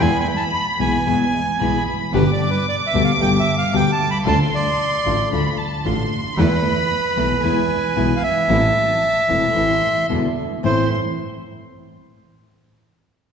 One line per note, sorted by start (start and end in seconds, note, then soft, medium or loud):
0.00 0.23 E2 medium
0.00 0.09 G#3 medium
0.00 0.22 B3 medium
0.00 0.09 B3 medium
0.00 0.23 E4 medium
0.00 0.09 E4 medium
0.00 0.23 G#4 medium
0.00 0.18 G#5 loud
0.00 1.02 B5 medium
0.20 0.27 G#5 medium
0.36 0.44 A5 medium
0.54 0.66 B5 medium
0.79 1.02 B1 medium
0.79 0.96 B2 medium
0.79 0.97 E3 medium
0.79 0.97 G#3 medium
0.79 1.02 B3 soft
0.79 0.97 B3 medium
0.79 1.02 E4 soft
0.79 0.97 E4 medium
0.79 1.02 G#4 soft
0.79 1.83 G#5 medium
1.06 1.29 E2 soft
1.06 1.23 B2 medium
1.06 1.24 E3 medium
1.06 1.24 G#3 medium
1.06 1.29 B3 soft
1.06 1.24 B3 medium
1.06 1.29 E4 soft
1.06 1.24 E4 medium
1.06 1.29 G#4 soft
1.06 1.60 G#5 medium
1.59 1.82 B1 medium
1.59 1.77 B2 medium
1.59 1.77 E3 medium
1.59 1.78 G#3 medium
1.59 1.83 B3 soft
1.59 1.78 B3 medium
1.59 1.82 E4 soft
1.59 1.78 E4 medium
1.59 1.83 G#4 soft
1.59 2.14 B5 medium
2.13 2.36 G1 medium
2.13 2.23 B2 medium
2.13 2.23 D3 medium
2.13 2.23 G3 medium
2.13 2.36 B3 medium
2.13 2.23 B3 medium
2.13 2.36 D4 medium
2.13 2.36 G4 medium
2.13 2.23 G4 medium
2.13 2.31 B4 medium
2.13 4.26 D6 loud
2.33 2.50 D5 medium
2.50 2.66 B4 medium
2.68 2.76 D5 medium
2.87 3.03 E5 medium
2.92 3.16 D2 medium
2.92 3.11 B2 medium
2.92 3.11 D3 medium
2.92 3.11 G3 medium
2.92 3.15 B3 soft
2.92 3.11 B3 medium
2.92 3.16 D4 soft
2.92 3.16 G4 soft
2.92 3.11 G4 medium
3.04 3.12 F5 medium
3.20 3.43 G1 medium
3.20 3.37 B2 medium
3.20 3.37 D3 medium
3.20 3.37 G3 medium
3.20 3.42 B3 soft
3.20 3.37 B3 medium
3.20 3.43 D4 soft
3.20 3.43 G4 medium
3.20 3.37 G4 medium
3.20 3.29 G5 medium
3.39 3.55 E5 medium
3.58 3.75 F5 medium
3.72 3.95 D2 medium
3.72 3.90 B2 medium
3.72 3.90 D3 medium
3.72 3.90 G3 medium
3.72 3.95 B3 soft
3.72 3.91 B3 medium
3.72 3.95 D4 soft
3.72 3.95 G4 medium
3.72 3.91 G4 medium
3.72 3.91 G5 medium
3.92 4.10 A5 medium
4.11 4.18 B5 medium
4.25 4.48 D2 medium
4.25 4.35 D3 medium
4.25 4.48 A3 medium
4.25 4.35 A3 medium
4.25 4.48 D4 medium
4.25 4.35 D4 medium
4.25 4.48 F4 medium
4.25 4.35 F4 medium
4.25 4.39 A5 loud
4.25 5.28 C6 medium
4.55 5.29 D5 medium
5.05 5.28 A1 medium
5.05 5.22 D3 medium
5.05 5.28 A3 medium
5.05 5.23 A3 medium
5.05 5.28 D4 soft
5.05 5.23 D4 medium
5.05 5.28 F4 medium
5.05 5.23 F4 medium
5.32 5.54 D2 medium
5.32 5.49 D3 medium
5.32 5.54 A3 soft
5.32 5.49 A3 medium
5.32 5.54 D4 soft
5.32 5.49 D4 medium
5.32 5.54 F4 medium
5.32 5.50 F4 medium
5.32 5.59 B5 medium
5.58 5.85 A5 medium
5.85 6.07 A1 medium
5.85 6.02 D3 medium
5.85 6.07 A3 soft
5.85 6.02 A3 medium
5.85 6.07 D4 soft
5.85 6.02 D4 medium
5.85 6.07 F4 soft
5.85 6.02 F4 medium
5.85 6.38 C6 medium
6.37 6.60 E2 medium
6.37 6.47 E3 medium
6.37 6.60 A3 medium
6.37 6.47 A3 medium
6.37 6.60 B3 medium
6.37 6.47 B3 medium
6.37 6.60 E4 medium
6.37 6.47 E4 medium
6.37 8.22 B4 medium
6.37 7.43 B5 loud
7.16 7.39 B1 medium
7.16 7.34 E3 medium
7.16 7.39 A3 soft
7.16 7.34 A3 medium
7.16 7.39 B3 soft
7.16 7.34 B3 medium
7.16 7.39 E4 medium
7.16 7.34 E4 medium
7.43 7.66 E2 medium
7.43 7.60 B2 medium
7.43 7.60 E3 medium
7.43 7.60 G#3 medium
7.43 7.66 G#3 medium
7.43 7.61 B3 medium
7.43 7.66 B3 soft
7.43 7.66 E4 medium
7.43 7.61 E4 medium
7.43 8.50 G#5 medium
7.96 8.19 B1 medium
7.96 8.13 B2 medium
7.96 8.13 E3 medium
7.96 8.19 G#3 soft
7.96 8.13 G#3 medium
7.96 8.19 B3 soft
7.96 8.14 B3 medium
7.96 8.19 E4 medium
7.96 8.14 E4 medium
8.16 8.23 F5 medium
8.23 10.06 E5 loud
8.49 8.72 A1 medium
8.49 8.58 E3 medium
8.49 8.72 A3 medium
8.49 8.58 A3 medium
8.49 8.72 C4 medium
8.49 8.58 C4 medium
8.49 8.72 E4 medium
8.49 8.59 E4 medium
8.49 9.49 A5 medium
9.28 9.52 E1 medium
9.28 9.46 E3 medium
9.28 9.51 A3 soft
9.28 9.46 A3 medium
9.28 9.51 C4 soft
9.28 9.46 C4 medium
9.28 9.52 E4 soft
9.28 9.47 E4 medium
9.51 9.57 B5 medium
9.55 9.79 A1 medium
9.55 9.73 E3 medium
9.55 9.78 A3 soft
9.55 9.73 A3 medium
9.55 9.78 C4 soft
9.55 9.73 C4 medium
9.55 9.78 E4 medium
9.55 9.73 E4 medium
9.55 10.10 C6 medium
10.09 10.33 E2 medium
10.09 10.27 B2 medium
10.09 10.27 D3 medium
10.09 10.33 G#3 soft
10.09 10.27 G#3 medium
10.09 10.27 B3 medium
10.09 10.33 D4 soft
10.09 10.27 E4 medium
10.09 10.33 E4 soft
10.63 10.87 A1 medium
10.63 10.85 A2 medium
10.63 10.85 E3 medium
10.63 10.85 A3 medium
10.63 10.87 A3 soft
10.63 10.87 C4 soft
10.63 10.86 C4 medium
10.63 10.87 E4 medium
10.63 10.86 E4 medium
10.63 10.90 C5 medium
10.63 10.90 C6 medium